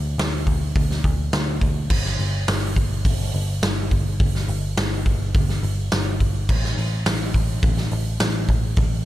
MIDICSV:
0, 0, Header, 1, 3, 480
1, 0, Start_track
1, 0, Tempo, 573614
1, 1593, Time_signature, 4, 2, 24, 8
1, 7573, End_track
2, 0, Start_track
2, 0, Title_t, "Picked electric bass"
2, 0, Program_c, 0, 34
2, 0, Note_on_c, 0, 38, 92
2, 128, Note_off_c, 0, 38, 0
2, 153, Note_on_c, 0, 38, 94
2, 367, Note_off_c, 0, 38, 0
2, 391, Note_on_c, 0, 38, 87
2, 607, Note_off_c, 0, 38, 0
2, 634, Note_on_c, 0, 38, 82
2, 848, Note_off_c, 0, 38, 0
2, 872, Note_on_c, 0, 38, 100
2, 1088, Note_off_c, 0, 38, 0
2, 1115, Note_on_c, 0, 38, 96
2, 1329, Note_off_c, 0, 38, 0
2, 1348, Note_on_c, 0, 38, 90
2, 1565, Note_off_c, 0, 38, 0
2, 1590, Note_on_c, 0, 31, 101
2, 1807, Note_off_c, 0, 31, 0
2, 1834, Note_on_c, 0, 31, 89
2, 2049, Note_off_c, 0, 31, 0
2, 2075, Note_on_c, 0, 31, 96
2, 2290, Note_off_c, 0, 31, 0
2, 2313, Note_on_c, 0, 31, 93
2, 2529, Note_off_c, 0, 31, 0
2, 2551, Note_on_c, 0, 31, 92
2, 2768, Note_off_c, 0, 31, 0
2, 2797, Note_on_c, 0, 31, 93
2, 3011, Note_off_c, 0, 31, 0
2, 3033, Note_on_c, 0, 31, 93
2, 3249, Note_off_c, 0, 31, 0
2, 3277, Note_on_c, 0, 31, 95
2, 3491, Note_off_c, 0, 31, 0
2, 3515, Note_on_c, 0, 31, 112
2, 3730, Note_off_c, 0, 31, 0
2, 3751, Note_on_c, 0, 31, 104
2, 3968, Note_off_c, 0, 31, 0
2, 3992, Note_on_c, 0, 31, 104
2, 4208, Note_off_c, 0, 31, 0
2, 4233, Note_on_c, 0, 31, 96
2, 4448, Note_off_c, 0, 31, 0
2, 4475, Note_on_c, 0, 31, 90
2, 4689, Note_off_c, 0, 31, 0
2, 4712, Note_on_c, 0, 31, 102
2, 4927, Note_off_c, 0, 31, 0
2, 4956, Note_on_c, 0, 31, 101
2, 5170, Note_off_c, 0, 31, 0
2, 5194, Note_on_c, 0, 31, 94
2, 5409, Note_off_c, 0, 31, 0
2, 5434, Note_on_c, 0, 33, 115
2, 5648, Note_off_c, 0, 33, 0
2, 5669, Note_on_c, 0, 33, 87
2, 5886, Note_off_c, 0, 33, 0
2, 5910, Note_on_c, 0, 33, 94
2, 6126, Note_off_c, 0, 33, 0
2, 6148, Note_on_c, 0, 33, 88
2, 6364, Note_off_c, 0, 33, 0
2, 6383, Note_on_c, 0, 33, 89
2, 6602, Note_off_c, 0, 33, 0
2, 6627, Note_on_c, 0, 33, 104
2, 6843, Note_off_c, 0, 33, 0
2, 6861, Note_on_c, 0, 33, 97
2, 7080, Note_off_c, 0, 33, 0
2, 7103, Note_on_c, 0, 33, 96
2, 7321, Note_off_c, 0, 33, 0
2, 7341, Note_on_c, 0, 33, 105
2, 7560, Note_off_c, 0, 33, 0
2, 7573, End_track
3, 0, Start_track
3, 0, Title_t, "Drums"
3, 158, Note_on_c, 9, 46, 97
3, 163, Note_on_c, 9, 38, 123
3, 242, Note_off_c, 9, 46, 0
3, 247, Note_off_c, 9, 38, 0
3, 392, Note_on_c, 9, 36, 88
3, 393, Note_on_c, 9, 46, 62
3, 475, Note_off_c, 9, 36, 0
3, 476, Note_off_c, 9, 46, 0
3, 633, Note_on_c, 9, 36, 108
3, 636, Note_on_c, 9, 46, 83
3, 717, Note_off_c, 9, 36, 0
3, 719, Note_off_c, 9, 46, 0
3, 761, Note_on_c, 9, 38, 35
3, 845, Note_off_c, 9, 38, 0
3, 872, Note_on_c, 9, 36, 84
3, 872, Note_on_c, 9, 46, 58
3, 955, Note_off_c, 9, 36, 0
3, 956, Note_off_c, 9, 46, 0
3, 1109, Note_on_c, 9, 46, 85
3, 1114, Note_on_c, 9, 38, 109
3, 1193, Note_off_c, 9, 46, 0
3, 1198, Note_off_c, 9, 38, 0
3, 1349, Note_on_c, 9, 46, 61
3, 1351, Note_on_c, 9, 36, 89
3, 1433, Note_off_c, 9, 46, 0
3, 1435, Note_off_c, 9, 36, 0
3, 1590, Note_on_c, 9, 49, 127
3, 1591, Note_on_c, 9, 36, 114
3, 1673, Note_off_c, 9, 49, 0
3, 1675, Note_off_c, 9, 36, 0
3, 1717, Note_on_c, 9, 38, 31
3, 1801, Note_off_c, 9, 38, 0
3, 1832, Note_on_c, 9, 46, 72
3, 1916, Note_off_c, 9, 46, 0
3, 2072, Note_on_c, 9, 46, 102
3, 2077, Note_on_c, 9, 38, 127
3, 2156, Note_off_c, 9, 46, 0
3, 2161, Note_off_c, 9, 38, 0
3, 2313, Note_on_c, 9, 36, 88
3, 2316, Note_on_c, 9, 46, 67
3, 2397, Note_off_c, 9, 36, 0
3, 2399, Note_off_c, 9, 46, 0
3, 2552, Note_on_c, 9, 36, 117
3, 2553, Note_on_c, 9, 46, 106
3, 2636, Note_off_c, 9, 36, 0
3, 2637, Note_off_c, 9, 46, 0
3, 2790, Note_on_c, 9, 46, 62
3, 2873, Note_off_c, 9, 46, 0
3, 3032, Note_on_c, 9, 46, 98
3, 3037, Note_on_c, 9, 38, 123
3, 3116, Note_off_c, 9, 46, 0
3, 3121, Note_off_c, 9, 38, 0
3, 3274, Note_on_c, 9, 36, 81
3, 3274, Note_on_c, 9, 46, 58
3, 3358, Note_off_c, 9, 36, 0
3, 3358, Note_off_c, 9, 46, 0
3, 3515, Note_on_c, 9, 36, 117
3, 3516, Note_on_c, 9, 46, 87
3, 3598, Note_off_c, 9, 36, 0
3, 3600, Note_off_c, 9, 46, 0
3, 3641, Note_on_c, 9, 38, 35
3, 3725, Note_off_c, 9, 38, 0
3, 3751, Note_on_c, 9, 46, 64
3, 3834, Note_off_c, 9, 46, 0
3, 3991, Note_on_c, 9, 46, 97
3, 3996, Note_on_c, 9, 38, 127
3, 4075, Note_off_c, 9, 46, 0
3, 4080, Note_off_c, 9, 38, 0
3, 4233, Note_on_c, 9, 36, 81
3, 4233, Note_on_c, 9, 46, 66
3, 4317, Note_off_c, 9, 36, 0
3, 4317, Note_off_c, 9, 46, 0
3, 4472, Note_on_c, 9, 46, 87
3, 4474, Note_on_c, 9, 36, 121
3, 4556, Note_off_c, 9, 46, 0
3, 4557, Note_off_c, 9, 36, 0
3, 4597, Note_on_c, 9, 38, 34
3, 4680, Note_off_c, 9, 38, 0
3, 4713, Note_on_c, 9, 46, 65
3, 4796, Note_off_c, 9, 46, 0
3, 4949, Note_on_c, 9, 46, 89
3, 4954, Note_on_c, 9, 38, 117
3, 5032, Note_off_c, 9, 46, 0
3, 5037, Note_off_c, 9, 38, 0
3, 5190, Note_on_c, 9, 46, 60
3, 5192, Note_on_c, 9, 36, 73
3, 5274, Note_off_c, 9, 46, 0
3, 5275, Note_off_c, 9, 36, 0
3, 5431, Note_on_c, 9, 36, 107
3, 5431, Note_on_c, 9, 49, 111
3, 5515, Note_off_c, 9, 36, 0
3, 5515, Note_off_c, 9, 49, 0
3, 5559, Note_on_c, 9, 38, 37
3, 5642, Note_off_c, 9, 38, 0
3, 5672, Note_on_c, 9, 46, 70
3, 5756, Note_off_c, 9, 46, 0
3, 5905, Note_on_c, 9, 46, 109
3, 5910, Note_on_c, 9, 38, 127
3, 5988, Note_off_c, 9, 46, 0
3, 5993, Note_off_c, 9, 38, 0
3, 6143, Note_on_c, 9, 46, 69
3, 6145, Note_on_c, 9, 36, 88
3, 6227, Note_off_c, 9, 46, 0
3, 6229, Note_off_c, 9, 36, 0
3, 6383, Note_on_c, 9, 46, 101
3, 6384, Note_on_c, 9, 36, 127
3, 6467, Note_off_c, 9, 46, 0
3, 6468, Note_off_c, 9, 36, 0
3, 6505, Note_on_c, 9, 38, 39
3, 6588, Note_off_c, 9, 38, 0
3, 6621, Note_on_c, 9, 46, 62
3, 6704, Note_off_c, 9, 46, 0
3, 6859, Note_on_c, 9, 46, 94
3, 6864, Note_on_c, 9, 38, 120
3, 6943, Note_off_c, 9, 46, 0
3, 6948, Note_off_c, 9, 38, 0
3, 7100, Note_on_c, 9, 46, 59
3, 7102, Note_on_c, 9, 36, 80
3, 7183, Note_off_c, 9, 46, 0
3, 7185, Note_off_c, 9, 36, 0
3, 7333, Note_on_c, 9, 46, 89
3, 7340, Note_on_c, 9, 36, 116
3, 7417, Note_off_c, 9, 46, 0
3, 7424, Note_off_c, 9, 36, 0
3, 7573, End_track
0, 0, End_of_file